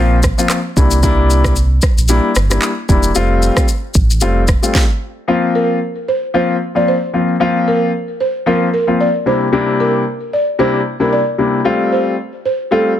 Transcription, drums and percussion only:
0.23 kick, cross-stick, shaker
0.39 shaker
0.50 cross-stick, clap, shaker
0.77 kick, shaker
0.91 shaker
1.03 kick, shaker
1.30 shaker
1.44 kick, cross-stick, shaker
1.56 shaker
1.82 kick, cross-stick, shaker
1.98 shaker
2.08 shaker
2.35 cross-stick, shaker
2.51 cross-stick, shaker
2.62 clap, shaker
2.89 kick, shaker
3.03 shaker
3.15 shaker
3.42 shaker
3.57 kick, cross-stick, shaker
3.68 shaker
3.94 kick, shaker
4.10 shaker
4.21 shaker
4.48 kick, cross-stick, shaker
4.64 shaker
4.75 kick, snare

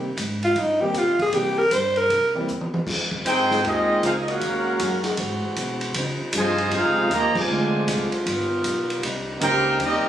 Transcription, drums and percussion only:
0.17 kick, hi-hat pedal, ride
0.43 ride
0.56 kick, ride
0.94 kick, hi-hat pedal, ride
1.19 kick, ride
1.32 kick, ride
1.71 kick, hi-hat pedal, ride
1.96 ride
2.10 kick, ride
2.48 hi-hat pedal
2.61 mid tom
2.74 mid tom
2.87 kick, snare, crash
3.12 kick
3.25 kick, hi-hat pedal, ride
3.51 snare
3.64 kick, ride
4.03 kick, hi-hat pedal, ride
4.28 ride
4.41 kick, ride
4.79 kick, hi-hat pedal, ride
5.04 snare, ride
5.17 kick, ride
5.56 kick, hi-hat pedal, ride
5.81 ride
5.94 kick, ride
6.33 kick, hi-hat pedal, ride
6.58 ride
6.71 kick, ride
7.10 kick, hi-hat pedal, ride
7.35 kick, crash
7.88 kick, hi-hat pedal, ride
8.12 ride
8.26 kick, ride
8.64 kick, hi-hat pedal, ride
8.90 ride
9.03 kick, ride
9.41 kick, hi-hat pedal, ride
9.80 kick, ride

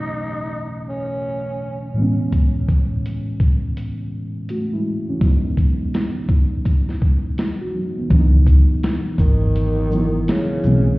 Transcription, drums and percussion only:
2.32 kick, closed hi-hat
2.69 kick, closed hi-hat
3.06 closed hi-hat
3.40 kick, closed hi-hat
3.77 closed hi-hat
4.49 closed hi-hat
5.21 kick, closed hi-hat
5.57 kick, closed hi-hat
5.94 snare, closed hi-hat
6.29 kick, closed hi-hat
6.65 kick, closed hi-hat
6.89 snare
7.02 kick
7.38 snare, closed hi-hat
8.10 kick, closed hi-hat
8.47 kick, closed hi-hat, shaker
8.83 snare, closed hi-hat
9.18 kick, closed hi-hat, shaker
9.56 closed hi-hat
9.92 shaker
10.28 snare, closed hi-hat
10.64 shaker

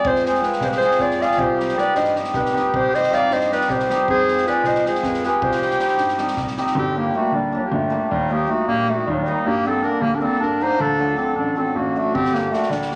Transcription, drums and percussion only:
0.05 kick
0.15 snare
0.25 snare
0.35 snare
0.43 snare
0.52 snare
0.61 snare
0.71 snare
0.81 snare
0.91 snare
0.99 kick, snare
1.10 snare
1.21 snare
1.31 snare
1.39 kick
1.60 snare
1.68 snare
1.78 snare
1.95 snare
2.04 snare
2.15 snare
2.24 snare
2.33 kick, snare
2.45 snare
2.56 snare
2.74 kick
2.94 snare
3.03 snare
3.12 snare
3.30 snare
3.40 snare
3.52 snare
3.61 snare
3.69 kick, snare
3.79 snare
3.90 snare
4.08 kick
4.28 snare
4.37 snare
4.46 snare
4.64 snare
4.75 snare
4.86 snare
4.95 snare
5.03 kick, snare
5.14 snare
5.23 snare
5.42 kick
5.51 snare
5.62 snare
5.70 snare
5.79 snare
5.88 snare
5.97 snare
6.08 snare
6.18 snare
6.27 snare
6.37 kick, snare
6.47 snare
6.57 snare
6.66 snare
12.15 kick
12.25 snare
12.35 snare
12.53 snare
12.63 snare
12.71 snare
12.82 snare
12.91 snare

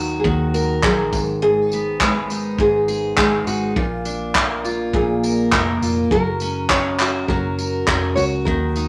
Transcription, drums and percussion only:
0.24 kick
0.54 tambourine
0.83 kick, clap
1.13 kick, tambourine
1.72 tambourine
2.00 kick, clap
2.30 tambourine
2.59 kick
2.88 tambourine
3.18 kick, clap
3.47 tambourine
3.76 kick
4.05 tambourine
4.35 kick, clap
4.65 tambourine
4.93 kick
5.24 tambourine
5.52 kick, clap
5.82 tambourine
6.11 kick
6.40 tambourine
6.70 kick, clap
7.00 clap, tambourine
7.28 kick
7.59 tambourine
7.88 kick, clap
8.17 tambourine
8.47 kick
8.76 tambourine

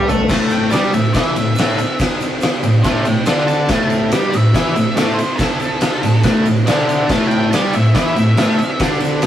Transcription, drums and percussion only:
0.09 floor tom, shaker
0.20 floor tom
0.29 kick, snare, crash, shaker
0.50 ride, shaker
0.70 snare, ride, shaker
0.93 ride, shaker
1.05 shaker
1.14 kick, snare, ride, shaker
1.35 ride, shaker
1.55 ride, shaker
1.60 snare
1.78 ride, shaker
1.99 kick, snare, ride, shaker
2.20 ride, shaker
2.41 snare, ride, shaker
2.52 shaker
2.63 ride, shaker
2.84 kick, snare, ride, shaker
3.05 ride, shaker
3.26 snare, ride, shaker
3.38 shaker
3.48 ride, shaker
3.69 kick, snare, ride, shaker
3.90 ride, shaker
4.12 snare, ride, shaker
4.33 ride, shaker
4.44 shaker
4.54 kick, snare, ride, shaker
4.76 ride, shaker
4.97 snare, ride, shaker
5.19 ride, shaker
5.38 kick, snare, ride, shaker
5.51 shaker
5.60 ride, shaker
5.81 snare, ride, shaker
6.03 ride, shaker
6.23 kick, snare, ride, shaker
6.46 ride, shaker
6.67 snare, ride, shaker
6.79 shaker
6.89 ride, shaker
7.09 kick, snare, crash, shaker
7.31 ride
7.53 snare, ride, shaker
7.73 ride, shaker
7.95 kick, snare, ride, shaker
8.16 ride, shaker
8.37 snare, ride, shaker
8.59 ride, shaker
8.80 kick, snare, ride, shaker
8.95 shaker
9.00 ride, shaker
9.22 snare, ride, shaker

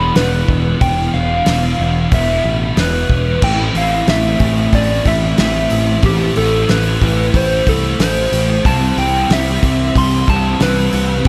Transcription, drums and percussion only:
0.16 snare, open hi-hat
0.48 kick
0.81 kick, open hi-hat
1.46 snare, open hi-hat
2.12 kick, open hi-hat
2.77 snare, open hi-hat
3.10 kick
3.42 kick, crash
3.75 open hi-hat
4.08 snare, open hi-hat
4.40 kick, open hi-hat
4.73 kick, open hi-hat
5.05 kick, open hi-hat
5.38 snare, open hi-hat
5.70 open hi-hat
6.03 kick, open hi-hat
6.36 open hi-hat
6.69 snare, open hi-hat
7.02 kick, open hi-hat
7.34 kick, open hi-hat
7.67 kick, open hi-hat
8.00 snare, open hi-hat
8.33 open hi-hat
8.65 kick, open hi-hat
8.98 open hi-hat
9.30 snare, open hi-hat
9.63 kick, open hi-hat
9.96 kick, open hi-hat
10.28 kick, open hi-hat
10.60 snare, open hi-hat
10.93 open hi-hat
11.25 open hi-hat

